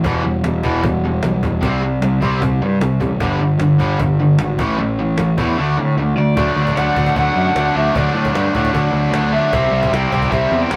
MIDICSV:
0, 0, Header, 1, 6, 480
1, 0, Start_track
1, 0, Tempo, 395257
1, 51, Time_signature, 4, 2, 24, 8
1, 13071, End_track
2, 0, Start_track
2, 0, Title_t, "Overdriven electric guitar"
2, 0, Program_c, 0, 29
2, 7492, Note_on_c, 0, 74, 91
2, 8204, Note_off_c, 0, 74, 0
2, 8208, Note_on_c, 0, 78, 101
2, 8688, Note_off_c, 0, 78, 0
2, 8702, Note_on_c, 0, 78, 100
2, 9372, Note_off_c, 0, 78, 0
2, 9417, Note_on_c, 0, 76, 90
2, 9661, Note_off_c, 0, 76, 0
2, 9661, Note_on_c, 0, 74, 84
2, 10140, Note_off_c, 0, 74, 0
2, 11329, Note_on_c, 0, 76, 102
2, 12066, Note_off_c, 0, 76, 0
2, 12071, Note_on_c, 0, 79, 112
2, 12523, Note_off_c, 0, 79, 0
2, 12528, Note_on_c, 0, 76, 91
2, 12885, Note_off_c, 0, 76, 0
2, 12890, Note_on_c, 0, 79, 100
2, 13026, Note_off_c, 0, 79, 0
2, 13026, Note_on_c, 0, 78, 109
2, 13071, Note_off_c, 0, 78, 0
2, 13071, End_track
3, 0, Start_track
3, 0, Title_t, "Overdriven electric guitar"
3, 0, Program_c, 1, 29
3, 44, Note_on_c, 1, 52, 86
3, 48, Note_on_c, 1, 55, 86
3, 59, Note_on_c, 1, 59, 92
3, 262, Note_off_c, 1, 52, 0
3, 268, Note_off_c, 1, 55, 0
3, 276, Note_on_c, 1, 52, 71
3, 281, Note_off_c, 1, 59, 0
3, 283, Note_on_c, 1, 55, 88
3, 500, Note_off_c, 1, 52, 0
3, 503, Note_off_c, 1, 55, 0
3, 532, Note_on_c, 1, 52, 72
3, 540, Note_on_c, 1, 55, 79
3, 748, Note_off_c, 1, 52, 0
3, 753, Note_off_c, 1, 55, 0
3, 770, Note_on_c, 1, 52, 90
3, 771, Note_on_c, 1, 59, 93
3, 775, Note_on_c, 1, 55, 93
3, 998, Note_off_c, 1, 52, 0
3, 998, Note_off_c, 1, 59, 0
3, 1000, Note_off_c, 1, 55, 0
3, 1019, Note_on_c, 1, 52, 78
3, 1026, Note_on_c, 1, 55, 91
3, 1233, Note_off_c, 1, 52, 0
3, 1236, Note_off_c, 1, 55, 0
3, 1271, Note_on_c, 1, 52, 72
3, 1278, Note_on_c, 1, 55, 74
3, 1479, Note_off_c, 1, 52, 0
3, 1482, Note_off_c, 1, 55, 0
3, 1508, Note_on_c, 1, 52, 77
3, 1516, Note_on_c, 1, 55, 84
3, 1718, Note_off_c, 1, 52, 0
3, 1721, Note_off_c, 1, 55, 0
3, 1759, Note_on_c, 1, 52, 76
3, 1763, Note_on_c, 1, 55, 80
3, 1963, Note_off_c, 1, 52, 0
3, 1965, Note_off_c, 1, 55, 0
3, 1990, Note_on_c, 1, 48, 79
3, 2000, Note_on_c, 1, 55, 96
3, 2000, Note_on_c, 1, 60, 88
3, 2209, Note_off_c, 1, 48, 0
3, 2214, Note_off_c, 1, 55, 0
3, 2214, Note_off_c, 1, 60, 0
3, 2225, Note_on_c, 1, 48, 76
3, 2228, Note_on_c, 1, 55, 89
3, 2437, Note_off_c, 1, 48, 0
3, 2438, Note_off_c, 1, 55, 0
3, 2466, Note_on_c, 1, 48, 73
3, 2468, Note_on_c, 1, 55, 81
3, 2678, Note_off_c, 1, 48, 0
3, 2678, Note_off_c, 1, 55, 0
3, 2702, Note_on_c, 1, 48, 87
3, 2704, Note_on_c, 1, 55, 96
3, 2713, Note_on_c, 1, 60, 100
3, 2925, Note_off_c, 1, 48, 0
3, 2926, Note_off_c, 1, 55, 0
3, 2931, Note_off_c, 1, 60, 0
3, 2951, Note_on_c, 1, 48, 82
3, 2954, Note_on_c, 1, 55, 86
3, 3160, Note_off_c, 1, 48, 0
3, 3162, Note_off_c, 1, 55, 0
3, 3179, Note_on_c, 1, 48, 71
3, 3185, Note_on_c, 1, 55, 76
3, 3395, Note_off_c, 1, 48, 0
3, 3398, Note_off_c, 1, 55, 0
3, 3409, Note_on_c, 1, 48, 80
3, 3416, Note_on_c, 1, 55, 86
3, 3626, Note_off_c, 1, 48, 0
3, 3633, Note_off_c, 1, 55, 0
3, 3641, Note_on_c, 1, 48, 76
3, 3648, Note_on_c, 1, 55, 79
3, 3866, Note_off_c, 1, 48, 0
3, 3869, Note_off_c, 1, 55, 0
3, 3895, Note_on_c, 1, 43, 83
3, 3902, Note_on_c, 1, 50, 101
3, 3906, Note_on_c, 1, 55, 94
3, 4121, Note_off_c, 1, 50, 0
3, 4123, Note_off_c, 1, 43, 0
3, 4128, Note_off_c, 1, 55, 0
3, 4136, Note_on_c, 1, 43, 75
3, 4136, Note_on_c, 1, 50, 86
3, 4354, Note_off_c, 1, 43, 0
3, 4354, Note_off_c, 1, 50, 0
3, 4374, Note_on_c, 1, 43, 66
3, 4379, Note_on_c, 1, 50, 84
3, 4581, Note_off_c, 1, 43, 0
3, 4590, Note_off_c, 1, 50, 0
3, 4596, Note_on_c, 1, 43, 94
3, 4605, Note_on_c, 1, 50, 92
3, 4609, Note_on_c, 1, 55, 99
3, 4832, Note_off_c, 1, 50, 0
3, 4833, Note_off_c, 1, 43, 0
3, 4840, Note_off_c, 1, 55, 0
3, 4845, Note_on_c, 1, 43, 86
3, 4846, Note_on_c, 1, 50, 90
3, 5069, Note_off_c, 1, 43, 0
3, 5069, Note_off_c, 1, 50, 0
3, 5094, Note_on_c, 1, 43, 73
3, 5098, Note_on_c, 1, 50, 85
3, 5313, Note_off_c, 1, 43, 0
3, 5315, Note_off_c, 1, 50, 0
3, 5343, Note_on_c, 1, 43, 81
3, 5349, Note_on_c, 1, 50, 82
3, 5557, Note_off_c, 1, 43, 0
3, 5561, Note_off_c, 1, 50, 0
3, 5589, Note_on_c, 1, 45, 84
3, 5592, Note_on_c, 1, 52, 103
3, 5602, Note_on_c, 1, 57, 99
3, 5807, Note_off_c, 1, 45, 0
3, 5812, Note_off_c, 1, 52, 0
3, 5816, Note_off_c, 1, 57, 0
3, 5822, Note_on_c, 1, 45, 77
3, 5826, Note_on_c, 1, 52, 75
3, 6037, Note_off_c, 1, 45, 0
3, 6039, Note_off_c, 1, 52, 0
3, 6063, Note_on_c, 1, 45, 71
3, 6074, Note_on_c, 1, 52, 78
3, 6278, Note_off_c, 1, 45, 0
3, 6283, Note_off_c, 1, 52, 0
3, 6304, Note_on_c, 1, 45, 73
3, 6308, Note_on_c, 1, 52, 85
3, 6518, Note_off_c, 1, 45, 0
3, 6520, Note_off_c, 1, 52, 0
3, 6533, Note_on_c, 1, 45, 88
3, 6539, Note_on_c, 1, 52, 93
3, 6545, Note_on_c, 1, 57, 106
3, 6758, Note_off_c, 1, 57, 0
3, 6763, Note_off_c, 1, 45, 0
3, 6765, Note_off_c, 1, 52, 0
3, 6772, Note_on_c, 1, 50, 97
3, 6773, Note_on_c, 1, 57, 91
3, 6782, Note_on_c, 1, 62, 98
3, 6999, Note_off_c, 1, 50, 0
3, 7002, Note_off_c, 1, 57, 0
3, 7007, Note_off_c, 1, 62, 0
3, 7014, Note_on_c, 1, 50, 74
3, 7018, Note_on_c, 1, 57, 75
3, 7233, Note_off_c, 1, 50, 0
3, 7235, Note_off_c, 1, 57, 0
3, 7257, Note_on_c, 1, 50, 82
3, 7263, Note_on_c, 1, 57, 81
3, 7475, Note_off_c, 1, 50, 0
3, 7478, Note_off_c, 1, 57, 0
3, 7500, Note_on_c, 1, 50, 78
3, 7505, Note_on_c, 1, 57, 74
3, 7716, Note_off_c, 1, 50, 0
3, 7719, Note_off_c, 1, 57, 0
3, 7731, Note_on_c, 1, 50, 93
3, 7732, Note_on_c, 1, 54, 89
3, 7738, Note_on_c, 1, 57, 103
3, 7746, Note_on_c, 1, 62, 96
3, 8213, Note_off_c, 1, 50, 0
3, 8214, Note_off_c, 1, 57, 0
3, 8218, Note_on_c, 1, 50, 86
3, 8219, Note_off_c, 1, 54, 0
3, 8219, Note_on_c, 1, 57, 92
3, 8221, Note_off_c, 1, 62, 0
3, 8223, Note_on_c, 1, 54, 82
3, 8225, Note_on_c, 1, 62, 80
3, 8445, Note_off_c, 1, 50, 0
3, 8450, Note_on_c, 1, 50, 82
3, 8457, Note_off_c, 1, 54, 0
3, 8459, Note_off_c, 1, 57, 0
3, 8462, Note_on_c, 1, 54, 80
3, 8464, Note_off_c, 1, 62, 0
3, 8464, Note_on_c, 1, 57, 83
3, 8469, Note_on_c, 1, 62, 92
3, 8689, Note_off_c, 1, 50, 0
3, 8692, Note_off_c, 1, 54, 0
3, 8697, Note_off_c, 1, 57, 0
3, 8700, Note_off_c, 1, 62, 0
3, 8703, Note_on_c, 1, 50, 102
3, 8707, Note_on_c, 1, 54, 100
3, 8711, Note_on_c, 1, 57, 104
3, 8715, Note_on_c, 1, 62, 112
3, 9158, Note_off_c, 1, 50, 0
3, 9164, Note_off_c, 1, 54, 0
3, 9173, Note_off_c, 1, 57, 0
3, 9173, Note_on_c, 1, 50, 90
3, 9175, Note_off_c, 1, 62, 0
3, 9179, Note_on_c, 1, 54, 85
3, 9187, Note_on_c, 1, 57, 91
3, 9189, Note_on_c, 1, 62, 91
3, 9399, Note_off_c, 1, 50, 0
3, 9403, Note_off_c, 1, 54, 0
3, 9406, Note_off_c, 1, 57, 0
3, 9410, Note_off_c, 1, 62, 0
3, 9414, Note_on_c, 1, 50, 88
3, 9418, Note_on_c, 1, 54, 90
3, 9421, Note_on_c, 1, 57, 88
3, 9425, Note_on_c, 1, 62, 96
3, 9647, Note_off_c, 1, 50, 0
3, 9649, Note_off_c, 1, 54, 0
3, 9656, Note_off_c, 1, 62, 0
3, 9659, Note_off_c, 1, 57, 0
3, 9662, Note_on_c, 1, 50, 98
3, 9663, Note_on_c, 1, 54, 99
3, 9670, Note_on_c, 1, 62, 100
3, 9673, Note_on_c, 1, 57, 99
3, 10127, Note_off_c, 1, 50, 0
3, 10135, Note_off_c, 1, 54, 0
3, 10136, Note_off_c, 1, 57, 0
3, 10141, Note_on_c, 1, 50, 88
3, 10143, Note_off_c, 1, 62, 0
3, 10150, Note_on_c, 1, 54, 80
3, 10151, Note_on_c, 1, 57, 94
3, 10158, Note_on_c, 1, 62, 86
3, 10380, Note_off_c, 1, 50, 0
3, 10382, Note_off_c, 1, 54, 0
3, 10388, Note_off_c, 1, 62, 0
3, 10389, Note_off_c, 1, 57, 0
3, 10395, Note_on_c, 1, 50, 85
3, 10397, Note_on_c, 1, 54, 79
3, 10403, Note_on_c, 1, 57, 91
3, 10403, Note_on_c, 1, 62, 97
3, 10616, Note_off_c, 1, 50, 0
3, 10623, Note_off_c, 1, 54, 0
3, 10630, Note_off_c, 1, 57, 0
3, 10630, Note_off_c, 1, 62, 0
3, 10630, Note_on_c, 1, 50, 92
3, 10638, Note_on_c, 1, 54, 101
3, 10644, Note_on_c, 1, 57, 106
3, 10644, Note_on_c, 1, 62, 112
3, 11087, Note_off_c, 1, 50, 0
3, 11092, Note_off_c, 1, 54, 0
3, 11093, Note_off_c, 1, 57, 0
3, 11102, Note_on_c, 1, 50, 91
3, 11106, Note_off_c, 1, 62, 0
3, 11107, Note_on_c, 1, 54, 93
3, 11108, Note_on_c, 1, 57, 89
3, 11121, Note_on_c, 1, 62, 97
3, 11313, Note_off_c, 1, 50, 0
3, 11320, Note_off_c, 1, 57, 0
3, 11323, Note_off_c, 1, 54, 0
3, 11327, Note_on_c, 1, 50, 92
3, 11331, Note_off_c, 1, 62, 0
3, 11335, Note_on_c, 1, 57, 85
3, 11338, Note_on_c, 1, 54, 87
3, 11345, Note_on_c, 1, 62, 97
3, 11557, Note_off_c, 1, 50, 0
3, 11561, Note_off_c, 1, 57, 0
3, 11563, Note_off_c, 1, 54, 0
3, 11565, Note_on_c, 1, 48, 90
3, 11566, Note_off_c, 1, 62, 0
3, 11575, Note_on_c, 1, 55, 97
3, 11577, Note_on_c, 1, 60, 95
3, 11584, Note_on_c, 1, 64, 106
3, 12031, Note_off_c, 1, 48, 0
3, 12031, Note_off_c, 1, 60, 0
3, 12034, Note_off_c, 1, 55, 0
3, 12044, Note_off_c, 1, 64, 0
3, 12045, Note_on_c, 1, 60, 91
3, 12046, Note_on_c, 1, 48, 76
3, 12048, Note_on_c, 1, 55, 91
3, 12059, Note_on_c, 1, 64, 91
3, 12263, Note_off_c, 1, 48, 0
3, 12265, Note_off_c, 1, 55, 0
3, 12268, Note_off_c, 1, 60, 0
3, 12272, Note_off_c, 1, 64, 0
3, 12277, Note_on_c, 1, 48, 87
3, 12279, Note_on_c, 1, 55, 91
3, 12282, Note_on_c, 1, 60, 100
3, 12286, Note_on_c, 1, 64, 102
3, 12491, Note_off_c, 1, 48, 0
3, 12501, Note_off_c, 1, 60, 0
3, 12503, Note_off_c, 1, 55, 0
3, 12504, Note_off_c, 1, 64, 0
3, 12506, Note_on_c, 1, 48, 103
3, 12516, Note_on_c, 1, 60, 104
3, 12517, Note_on_c, 1, 55, 95
3, 12519, Note_on_c, 1, 64, 104
3, 12981, Note_off_c, 1, 48, 0
3, 12991, Note_off_c, 1, 55, 0
3, 12992, Note_off_c, 1, 60, 0
3, 12996, Note_on_c, 1, 48, 88
3, 12998, Note_off_c, 1, 64, 0
3, 13006, Note_on_c, 1, 55, 96
3, 13007, Note_on_c, 1, 60, 86
3, 13013, Note_on_c, 1, 64, 100
3, 13071, Note_off_c, 1, 48, 0
3, 13071, Note_off_c, 1, 55, 0
3, 13071, Note_off_c, 1, 60, 0
3, 13071, Note_off_c, 1, 64, 0
3, 13071, End_track
4, 0, Start_track
4, 0, Title_t, "Overdriven electric guitar"
4, 0, Program_c, 2, 29
4, 58, Note_on_c, 2, 40, 89
4, 66, Note_on_c, 2, 47, 94
4, 274, Note_off_c, 2, 40, 0
4, 277, Note_off_c, 2, 47, 0
4, 289, Note_on_c, 2, 40, 70
4, 291, Note_on_c, 2, 47, 75
4, 507, Note_off_c, 2, 40, 0
4, 508, Note_off_c, 2, 47, 0
4, 530, Note_on_c, 2, 40, 70
4, 534, Note_on_c, 2, 47, 77
4, 748, Note_off_c, 2, 40, 0
4, 749, Note_off_c, 2, 47, 0
4, 772, Note_on_c, 2, 47, 87
4, 774, Note_on_c, 2, 40, 86
4, 998, Note_off_c, 2, 47, 0
4, 999, Note_off_c, 2, 40, 0
4, 1032, Note_on_c, 2, 47, 80
4, 1037, Note_on_c, 2, 40, 71
4, 1239, Note_off_c, 2, 47, 0
4, 1241, Note_off_c, 2, 40, 0
4, 1260, Note_on_c, 2, 40, 74
4, 1271, Note_on_c, 2, 47, 82
4, 1473, Note_off_c, 2, 40, 0
4, 1479, Note_off_c, 2, 47, 0
4, 1503, Note_on_c, 2, 40, 79
4, 1509, Note_on_c, 2, 47, 91
4, 1715, Note_off_c, 2, 40, 0
4, 1718, Note_off_c, 2, 47, 0
4, 1740, Note_on_c, 2, 40, 71
4, 1747, Note_on_c, 2, 47, 69
4, 1948, Note_off_c, 2, 47, 0
4, 1954, Note_off_c, 2, 40, 0
4, 13071, End_track
5, 0, Start_track
5, 0, Title_t, "Picked electric bass"
5, 0, Program_c, 3, 34
5, 53, Note_on_c, 3, 28, 88
5, 268, Note_off_c, 3, 28, 0
5, 301, Note_on_c, 3, 28, 87
5, 513, Note_off_c, 3, 28, 0
5, 539, Note_on_c, 3, 28, 91
5, 969, Note_off_c, 3, 28, 0
5, 1009, Note_on_c, 3, 28, 93
5, 1443, Note_off_c, 3, 28, 0
5, 1502, Note_on_c, 3, 35, 90
5, 1714, Note_off_c, 3, 35, 0
5, 1737, Note_on_c, 3, 28, 87
5, 1952, Note_off_c, 3, 28, 0
5, 1972, Note_on_c, 3, 36, 89
5, 2406, Note_off_c, 3, 36, 0
5, 2452, Note_on_c, 3, 36, 89
5, 2670, Note_off_c, 3, 36, 0
5, 2697, Note_on_c, 3, 36, 90
5, 2913, Note_off_c, 3, 36, 0
5, 2936, Note_on_c, 3, 36, 95
5, 3153, Note_off_c, 3, 36, 0
5, 3182, Note_on_c, 3, 43, 89
5, 3396, Note_off_c, 3, 43, 0
5, 3404, Note_on_c, 3, 36, 88
5, 3626, Note_off_c, 3, 36, 0
5, 3652, Note_on_c, 3, 33, 89
5, 3871, Note_off_c, 3, 33, 0
5, 3888, Note_on_c, 3, 31, 91
5, 4109, Note_off_c, 3, 31, 0
5, 4120, Note_on_c, 3, 31, 91
5, 4345, Note_off_c, 3, 31, 0
5, 4355, Note_on_c, 3, 31, 94
5, 4798, Note_off_c, 3, 31, 0
5, 4852, Note_on_c, 3, 31, 89
5, 5287, Note_off_c, 3, 31, 0
5, 5327, Note_on_c, 3, 32, 89
5, 5549, Note_off_c, 3, 32, 0
5, 5571, Note_on_c, 3, 33, 87
5, 5791, Note_off_c, 3, 33, 0
5, 5809, Note_on_c, 3, 33, 92
5, 6246, Note_off_c, 3, 33, 0
5, 6292, Note_on_c, 3, 33, 88
5, 6511, Note_off_c, 3, 33, 0
5, 6527, Note_on_c, 3, 40, 91
5, 6749, Note_off_c, 3, 40, 0
5, 6790, Note_on_c, 3, 38, 95
5, 7002, Note_off_c, 3, 38, 0
5, 7022, Note_on_c, 3, 45, 87
5, 7237, Note_off_c, 3, 45, 0
5, 7250, Note_on_c, 3, 38, 86
5, 7471, Note_off_c, 3, 38, 0
5, 7486, Note_on_c, 3, 38, 87
5, 7708, Note_off_c, 3, 38, 0
5, 7731, Note_on_c, 3, 38, 90
5, 7891, Note_off_c, 3, 38, 0
5, 7972, Note_on_c, 3, 38, 89
5, 8131, Note_off_c, 3, 38, 0
5, 8207, Note_on_c, 3, 38, 90
5, 8368, Note_off_c, 3, 38, 0
5, 8453, Note_on_c, 3, 38, 90
5, 8612, Note_off_c, 3, 38, 0
5, 8697, Note_on_c, 3, 38, 95
5, 8855, Note_off_c, 3, 38, 0
5, 8933, Note_on_c, 3, 42, 91
5, 9092, Note_off_c, 3, 42, 0
5, 9173, Note_on_c, 3, 38, 92
5, 9332, Note_off_c, 3, 38, 0
5, 9422, Note_on_c, 3, 38, 91
5, 9578, Note_off_c, 3, 38, 0
5, 9655, Note_on_c, 3, 38, 95
5, 9813, Note_off_c, 3, 38, 0
5, 9885, Note_on_c, 3, 45, 92
5, 10047, Note_off_c, 3, 45, 0
5, 10131, Note_on_c, 3, 43, 95
5, 10290, Note_off_c, 3, 43, 0
5, 10382, Note_on_c, 3, 45, 96
5, 10538, Note_off_c, 3, 45, 0
5, 10613, Note_on_c, 3, 38, 92
5, 10771, Note_off_c, 3, 38, 0
5, 10839, Note_on_c, 3, 38, 88
5, 11002, Note_off_c, 3, 38, 0
5, 11067, Note_on_c, 3, 38, 92
5, 11390, Note_off_c, 3, 38, 0
5, 11568, Note_on_c, 3, 36, 92
5, 11727, Note_off_c, 3, 36, 0
5, 11793, Note_on_c, 3, 36, 91
5, 11957, Note_off_c, 3, 36, 0
5, 12046, Note_on_c, 3, 36, 94
5, 12206, Note_off_c, 3, 36, 0
5, 12295, Note_on_c, 3, 36, 94
5, 12452, Note_off_c, 3, 36, 0
5, 12528, Note_on_c, 3, 36, 99
5, 12687, Note_off_c, 3, 36, 0
5, 12764, Note_on_c, 3, 40, 93
5, 12924, Note_off_c, 3, 40, 0
5, 13016, Note_on_c, 3, 33, 86
5, 13071, Note_off_c, 3, 33, 0
5, 13071, End_track
6, 0, Start_track
6, 0, Title_t, "Cajon"
6, 53, Note_on_c, 9, 36, 112
6, 174, Note_off_c, 9, 36, 0
6, 535, Note_on_c, 9, 38, 112
6, 657, Note_off_c, 9, 38, 0
6, 771, Note_on_c, 9, 36, 85
6, 892, Note_off_c, 9, 36, 0
6, 1014, Note_on_c, 9, 36, 112
6, 1136, Note_off_c, 9, 36, 0
6, 1490, Note_on_c, 9, 38, 114
6, 1611, Note_off_c, 9, 38, 0
6, 1736, Note_on_c, 9, 36, 93
6, 1857, Note_off_c, 9, 36, 0
6, 1977, Note_on_c, 9, 36, 114
6, 2098, Note_off_c, 9, 36, 0
6, 2455, Note_on_c, 9, 38, 108
6, 2577, Note_off_c, 9, 38, 0
6, 2698, Note_on_c, 9, 36, 92
6, 2820, Note_off_c, 9, 36, 0
6, 2938, Note_on_c, 9, 36, 118
6, 3059, Note_off_c, 9, 36, 0
6, 3417, Note_on_c, 9, 38, 119
6, 3538, Note_off_c, 9, 38, 0
6, 3655, Note_on_c, 9, 36, 86
6, 3776, Note_off_c, 9, 36, 0
6, 3891, Note_on_c, 9, 36, 114
6, 4012, Note_off_c, 9, 36, 0
6, 4366, Note_on_c, 9, 38, 107
6, 4488, Note_off_c, 9, 38, 0
6, 4613, Note_on_c, 9, 36, 83
6, 4734, Note_off_c, 9, 36, 0
6, 4853, Note_on_c, 9, 36, 113
6, 4974, Note_off_c, 9, 36, 0
6, 5326, Note_on_c, 9, 38, 120
6, 5447, Note_off_c, 9, 38, 0
6, 5572, Note_on_c, 9, 36, 114
6, 5694, Note_off_c, 9, 36, 0
6, 6286, Note_on_c, 9, 38, 117
6, 6407, Note_off_c, 9, 38, 0
6, 6531, Note_on_c, 9, 36, 88
6, 6652, Note_off_c, 9, 36, 0
6, 7736, Note_on_c, 9, 36, 113
6, 7857, Note_off_c, 9, 36, 0
6, 8099, Note_on_c, 9, 36, 82
6, 8221, Note_off_c, 9, 36, 0
6, 8225, Note_on_c, 9, 38, 112
6, 8347, Note_off_c, 9, 38, 0
6, 8458, Note_on_c, 9, 36, 90
6, 8579, Note_off_c, 9, 36, 0
6, 8579, Note_on_c, 9, 36, 87
6, 8696, Note_off_c, 9, 36, 0
6, 8696, Note_on_c, 9, 36, 96
6, 8818, Note_off_c, 9, 36, 0
6, 9179, Note_on_c, 9, 38, 117
6, 9300, Note_off_c, 9, 38, 0
6, 9661, Note_on_c, 9, 36, 117
6, 9782, Note_off_c, 9, 36, 0
6, 10020, Note_on_c, 9, 36, 80
6, 10141, Note_off_c, 9, 36, 0
6, 10144, Note_on_c, 9, 38, 113
6, 10266, Note_off_c, 9, 38, 0
6, 10380, Note_on_c, 9, 36, 89
6, 10500, Note_off_c, 9, 36, 0
6, 10500, Note_on_c, 9, 36, 82
6, 10621, Note_off_c, 9, 36, 0
6, 10622, Note_on_c, 9, 36, 101
6, 10743, Note_off_c, 9, 36, 0
6, 11095, Note_on_c, 9, 38, 115
6, 11217, Note_off_c, 9, 38, 0
6, 11574, Note_on_c, 9, 36, 113
6, 11696, Note_off_c, 9, 36, 0
6, 11936, Note_on_c, 9, 36, 87
6, 12057, Note_off_c, 9, 36, 0
6, 12066, Note_on_c, 9, 38, 113
6, 12187, Note_off_c, 9, 38, 0
6, 12293, Note_on_c, 9, 36, 87
6, 12414, Note_off_c, 9, 36, 0
6, 12414, Note_on_c, 9, 36, 83
6, 12533, Note_off_c, 9, 36, 0
6, 12533, Note_on_c, 9, 36, 99
6, 12654, Note_off_c, 9, 36, 0
6, 13006, Note_on_c, 9, 38, 121
6, 13071, Note_off_c, 9, 38, 0
6, 13071, End_track
0, 0, End_of_file